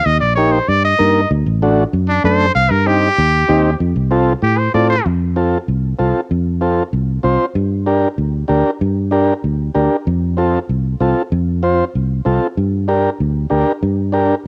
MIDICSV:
0, 0, Header, 1, 4, 480
1, 0, Start_track
1, 0, Tempo, 312826
1, 86, Time_signature, 4, 2, 24, 8
1, 22203, End_track
2, 0, Start_track
2, 0, Title_t, "Trumpet"
2, 0, Program_c, 0, 56
2, 77, Note_on_c, 0, 75, 93
2, 300, Note_off_c, 0, 75, 0
2, 309, Note_on_c, 0, 74, 85
2, 533, Note_off_c, 0, 74, 0
2, 542, Note_on_c, 0, 73, 79
2, 791, Note_on_c, 0, 72, 75
2, 814, Note_off_c, 0, 73, 0
2, 1051, Note_on_c, 0, 74, 90
2, 1074, Note_off_c, 0, 72, 0
2, 1280, Note_off_c, 0, 74, 0
2, 1298, Note_on_c, 0, 75, 94
2, 1987, Note_off_c, 0, 75, 0
2, 3197, Note_on_c, 0, 62, 93
2, 3429, Note_off_c, 0, 62, 0
2, 3443, Note_on_c, 0, 72, 94
2, 3897, Note_off_c, 0, 72, 0
2, 3906, Note_on_c, 0, 77, 97
2, 4140, Note_on_c, 0, 70, 89
2, 4163, Note_off_c, 0, 77, 0
2, 4391, Note_on_c, 0, 67, 102
2, 4414, Note_off_c, 0, 70, 0
2, 5786, Note_off_c, 0, 67, 0
2, 6787, Note_on_c, 0, 67, 96
2, 7020, Note_on_c, 0, 72, 80
2, 7043, Note_off_c, 0, 67, 0
2, 7256, Note_off_c, 0, 72, 0
2, 7271, Note_on_c, 0, 74, 68
2, 7502, Note_off_c, 0, 74, 0
2, 7509, Note_on_c, 0, 72, 82
2, 7741, Note_off_c, 0, 72, 0
2, 22203, End_track
3, 0, Start_track
3, 0, Title_t, "Transistor combo organ"
3, 0, Program_c, 1, 18
3, 565, Note_on_c, 1, 58, 71
3, 575, Note_on_c, 1, 63, 69
3, 576, Note_on_c, 1, 67, 85
3, 900, Note_off_c, 1, 58, 0
3, 905, Note_off_c, 1, 63, 0
3, 905, Note_off_c, 1, 67, 0
3, 1515, Note_on_c, 1, 58, 73
3, 1523, Note_on_c, 1, 63, 69
3, 1524, Note_on_c, 1, 70, 86
3, 1854, Note_off_c, 1, 58, 0
3, 1858, Note_off_c, 1, 63, 0
3, 1858, Note_off_c, 1, 70, 0
3, 2493, Note_on_c, 1, 57, 89
3, 2499, Note_on_c, 1, 62, 84
3, 2501, Note_on_c, 1, 66, 100
3, 2821, Note_off_c, 1, 57, 0
3, 2824, Note_off_c, 1, 62, 0
3, 2825, Note_off_c, 1, 66, 0
3, 3436, Note_on_c, 1, 57, 76
3, 3446, Note_on_c, 1, 62, 71
3, 3451, Note_on_c, 1, 69, 89
3, 3772, Note_off_c, 1, 57, 0
3, 3776, Note_off_c, 1, 62, 0
3, 3779, Note_off_c, 1, 69, 0
3, 4390, Note_on_c, 1, 60, 74
3, 4398, Note_on_c, 1, 63, 73
3, 4402, Note_on_c, 1, 67, 79
3, 4727, Note_off_c, 1, 60, 0
3, 4731, Note_off_c, 1, 63, 0
3, 4733, Note_off_c, 1, 67, 0
3, 5345, Note_on_c, 1, 60, 95
3, 5353, Note_on_c, 1, 63, 92
3, 5356, Note_on_c, 1, 67, 101
3, 5684, Note_off_c, 1, 60, 0
3, 5688, Note_off_c, 1, 63, 0
3, 5689, Note_off_c, 1, 67, 0
3, 6303, Note_on_c, 1, 60, 91
3, 6313, Note_on_c, 1, 65, 86
3, 6313, Note_on_c, 1, 69, 103
3, 6642, Note_off_c, 1, 60, 0
3, 6646, Note_off_c, 1, 69, 0
3, 6647, Note_off_c, 1, 65, 0
3, 7272, Note_on_c, 1, 60, 81
3, 7276, Note_on_c, 1, 65, 68
3, 7281, Note_on_c, 1, 69, 84
3, 7605, Note_off_c, 1, 60, 0
3, 7607, Note_off_c, 1, 65, 0
3, 7610, Note_off_c, 1, 69, 0
3, 8229, Note_on_c, 1, 60, 82
3, 8232, Note_on_c, 1, 65, 74
3, 8241, Note_on_c, 1, 69, 92
3, 8563, Note_off_c, 1, 60, 0
3, 8565, Note_off_c, 1, 65, 0
3, 8570, Note_off_c, 1, 69, 0
3, 9188, Note_on_c, 1, 60, 80
3, 9196, Note_on_c, 1, 65, 73
3, 9196, Note_on_c, 1, 69, 89
3, 9523, Note_off_c, 1, 60, 0
3, 9527, Note_off_c, 1, 65, 0
3, 9527, Note_off_c, 1, 69, 0
3, 10144, Note_on_c, 1, 65, 75
3, 10147, Note_on_c, 1, 60, 81
3, 10156, Note_on_c, 1, 69, 90
3, 10481, Note_off_c, 1, 65, 0
3, 10483, Note_off_c, 1, 60, 0
3, 10487, Note_off_c, 1, 69, 0
3, 11097, Note_on_c, 1, 60, 91
3, 11101, Note_on_c, 1, 65, 77
3, 11115, Note_on_c, 1, 72, 98
3, 11438, Note_off_c, 1, 60, 0
3, 11440, Note_off_c, 1, 65, 0
3, 11447, Note_off_c, 1, 72, 0
3, 12069, Note_on_c, 1, 62, 84
3, 12074, Note_on_c, 1, 67, 76
3, 12078, Note_on_c, 1, 70, 90
3, 12405, Note_off_c, 1, 62, 0
3, 12407, Note_off_c, 1, 67, 0
3, 12409, Note_off_c, 1, 70, 0
3, 13012, Note_on_c, 1, 62, 87
3, 13017, Note_on_c, 1, 67, 76
3, 13029, Note_on_c, 1, 70, 89
3, 13357, Note_off_c, 1, 62, 0
3, 13359, Note_off_c, 1, 67, 0
3, 13365, Note_off_c, 1, 70, 0
3, 13980, Note_on_c, 1, 62, 85
3, 13993, Note_on_c, 1, 67, 82
3, 13994, Note_on_c, 1, 70, 94
3, 14322, Note_off_c, 1, 62, 0
3, 14328, Note_off_c, 1, 67, 0
3, 14329, Note_off_c, 1, 70, 0
3, 14951, Note_on_c, 1, 62, 84
3, 14953, Note_on_c, 1, 67, 80
3, 14961, Note_on_c, 1, 70, 93
3, 15287, Note_off_c, 1, 62, 0
3, 15289, Note_off_c, 1, 67, 0
3, 15293, Note_off_c, 1, 70, 0
3, 15911, Note_on_c, 1, 60, 77
3, 15927, Note_on_c, 1, 65, 77
3, 15932, Note_on_c, 1, 69, 93
3, 16249, Note_off_c, 1, 60, 0
3, 16256, Note_off_c, 1, 65, 0
3, 16259, Note_off_c, 1, 69, 0
3, 16883, Note_on_c, 1, 60, 79
3, 16887, Note_on_c, 1, 65, 71
3, 16901, Note_on_c, 1, 69, 92
3, 17215, Note_off_c, 1, 60, 0
3, 17217, Note_off_c, 1, 65, 0
3, 17224, Note_off_c, 1, 69, 0
3, 17837, Note_on_c, 1, 60, 80
3, 17842, Note_on_c, 1, 65, 75
3, 17853, Note_on_c, 1, 72, 92
3, 18173, Note_off_c, 1, 60, 0
3, 18176, Note_off_c, 1, 65, 0
3, 18181, Note_off_c, 1, 72, 0
3, 18796, Note_on_c, 1, 60, 77
3, 18806, Note_on_c, 1, 65, 81
3, 18808, Note_on_c, 1, 69, 89
3, 19133, Note_off_c, 1, 60, 0
3, 19138, Note_off_c, 1, 65, 0
3, 19140, Note_off_c, 1, 69, 0
3, 19759, Note_on_c, 1, 62, 82
3, 19765, Note_on_c, 1, 67, 73
3, 19772, Note_on_c, 1, 70, 91
3, 20096, Note_off_c, 1, 62, 0
3, 20099, Note_off_c, 1, 67, 0
3, 20103, Note_off_c, 1, 70, 0
3, 20709, Note_on_c, 1, 62, 83
3, 20718, Note_on_c, 1, 67, 76
3, 20723, Note_on_c, 1, 70, 96
3, 21052, Note_off_c, 1, 62, 0
3, 21056, Note_off_c, 1, 67, 0
3, 21059, Note_off_c, 1, 70, 0
3, 21671, Note_on_c, 1, 62, 81
3, 21686, Note_on_c, 1, 67, 77
3, 21691, Note_on_c, 1, 70, 94
3, 22014, Note_off_c, 1, 62, 0
3, 22022, Note_off_c, 1, 67, 0
3, 22024, Note_off_c, 1, 70, 0
3, 22203, End_track
4, 0, Start_track
4, 0, Title_t, "Fingered electric bass"
4, 0, Program_c, 2, 33
4, 90, Note_on_c, 2, 39, 96
4, 280, Note_off_c, 2, 39, 0
4, 333, Note_on_c, 2, 34, 81
4, 904, Note_off_c, 2, 34, 0
4, 1049, Note_on_c, 2, 43, 87
4, 1430, Note_off_c, 2, 43, 0
4, 1533, Note_on_c, 2, 43, 95
4, 1911, Note_off_c, 2, 43, 0
4, 2006, Note_on_c, 2, 38, 105
4, 2195, Note_off_c, 2, 38, 0
4, 2246, Note_on_c, 2, 33, 99
4, 2818, Note_off_c, 2, 33, 0
4, 2964, Note_on_c, 2, 42, 90
4, 3345, Note_off_c, 2, 42, 0
4, 3436, Note_on_c, 2, 42, 92
4, 3820, Note_off_c, 2, 42, 0
4, 3915, Note_on_c, 2, 36, 95
4, 4107, Note_off_c, 2, 36, 0
4, 4150, Note_on_c, 2, 43, 99
4, 4727, Note_off_c, 2, 43, 0
4, 4881, Note_on_c, 2, 39, 96
4, 5261, Note_off_c, 2, 39, 0
4, 5359, Note_on_c, 2, 39, 91
4, 5739, Note_off_c, 2, 39, 0
4, 5833, Note_on_c, 2, 41, 101
4, 6024, Note_off_c, 2, 41, 0
4, 6072, Note_on_c, 2, 36, 90
4, 6646, Note_off_c, 2, 36, 0
4, 6788, Note_on_c, 2, 45, 87
4, 7172, Note_off_c, 2, 45, 0
4, 7279, Note_on_c, 2, 45, 95
4, 7658, Note_off_c, 2, 45, 0
4, 7760, Note_on_c, 2, 41, 102
4, 8522, Note_off_c, 2, 41, 0
4, 8720, Note_on_c, 2, 36, 86
4, 9098, Note_off_c, 2, 36, 0
4, 9201, Note_on_c, 2, 36, 74
4, 9387, Note_off_c, 2, 36, 0
4, 9680, Note_on_c, 2, 41, 95
4, 10443, Note_off_c, 2, 41, 0
4, 10631, Note_on_c, 2, 36, 87
4, 11014, Note_off_c, 2, 36, 0
4, 11111, Note_on_c, 2, 36, 79
4, 11302, Note_off_c, 2, 36, 0
4, 11589, Note_on_c, 2, 43, 106
4, 12357, Note_off_c, 2, 43, 0
4, 12553, Note_on_c, 2, 38, 87
4, 12935, Note_off_c, 2, 38, 0
4, 13034, Note_on_c, 2, 38, 86
4, 13224, Note_off_c, 2, 38, 0
4, 13520, Note_on_c, 2, 43, 100
4, 14285, Note_off_c, 2, 43, 0
4, 14483, Note_on_c, 2, 38, 82
4, 14862, Note_off_c, 2, 38, 0
4, 14968, Note_on_c, 2, 38, 83
4, 15154, Note_off_c, 2, 38, 0
4, 15449, Note_on_c, 2, 41, 102
4, 16212, Note_off_c, 2, 41, 0
4, 16405, Note_on_c, 2, 36, 84
4, 16785, Note_off_c, 2, 36, 0
4, 16883, Note_on_c, 2, 36, 78
4, 17072, Note_off_c, 2, 36, 0
4, 17365, Note_on_c, 2, 41, 109
4, 18130, Note_off_c, 2, 41, 0
4, 18337, Note_on_c, 2, 36, 88
4, 18714, Note_off_c, 2, 36, 0
4, 18813, Note_on_c, 2, 36, 90
4, 18999, Note_off_c, 2, 36, 0
4, 19291, Note_on_c, 2, 43, 96
4, 20056, Note_off_c, 2, 43, 0
4, 20256, Note_on_c, 2, 38, 82
4, 20634, Note_off_c, 2, 38, 0
4, 20731, Note_on_c, 2, 38, 79
4, 20920, Note_off_c, 2, 38, 0
4, 21212, Note_on_c, 2, 43, 101
4, 21978, Note_off_c, 2, 43, 0
4, 22203, End_track
0, 0, End_of_file